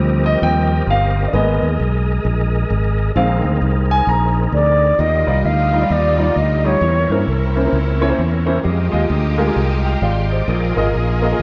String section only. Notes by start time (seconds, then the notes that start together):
4.99 G3 A#3 D#4 F4
6.80 C#3 A#3 C4 E4
8.64 G#3 D#4 F4 G4
10.49 D#4 G#4 A#4